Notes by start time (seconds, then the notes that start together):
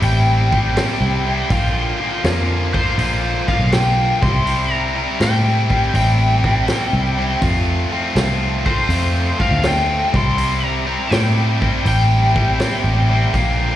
0.02 A1 C3 G3 C4 E4 G5, open hi-hat
0.52 C3 G3 C4 E4, kick
0.76 C3 G3 C4 E4, snare, open hi-hat
1.01 C2
1.26 C3 G3 C4 E4
1.50 A#1 A#2 D3 F3 A#3 F4, kick, open hi-hat
2.00 A#2 D3 F3 A#3 F4
2.24 F2 A#2 D3 F3 A#3 F4, snare, open hi-hat
2.73 A#2 D3 F3 A#3 F4 C5, kick
2.98 A#1 A#2 D3 F3 A#3 F4, open hi-hat
3.48 A#2 D3 F3 A#3 F4 F5, kick
3.59 B1
3.72 A#2 D3 F3 A#3 F4 G5, snare, open hi-hat
4.22 C2 C3 G3 C4 E4 C6, kick
4.45 C3 G3 C4 E4, open hi-hat
4.71 A#5
4.95 C3 G3 C4 E4
5.20 A2 C3 G3 C4 E4 G5, snare, open hi-hat
5.70 C3 G3 C4 E4, kick
5.94 A1 C3 G3 C4 E4 G5, open hi-hat
6.44 C3 G3 C4 E4, kick
6.67 C3 G3 C4 E4, snare, open hi-hat
6.93 C2
7.18 C3 G3 C4 E4
7.41 F2 F3 A3 C4 F4, kick, open hi-hat
7.91 F3 A3 C4 F4
8.16 C2 F3 A3 C4 F4, snare, open hi-hat
8.65 F3 A3 C4 F4 C5, kick
8.89 F2 F3 A3 C4 F4, open hi-hat
9.39 F3 A3 C4 F4 F5, kick
9.51 D2
9.63 F3 A3 C4 F4, snare, open hi-hat
9.67 G5
10.13 C2 C3 G3 C4 E4 C6, kick
10.36 C3 G3 C4 E4, open hi-hat
10.65 A#5
10.86 C3 G3 C4 E4
11.10 A2 C3 G3 C4 E4 G5, snare, open hi-hat
11.60 C3 G3 C4 E4, kick
11.84 A1 C3 G3 C4 E4 G5, open hi-hat
12.35 C3 G3 C4 E4, kick
12.60 C3 G3 C4 E4, snare, open hi-hat
12.84 A1
13.08 C3 G3 C4 E4
13.33 A#1 A#2 D3 F3 A#3 F4, kick, open hi-hat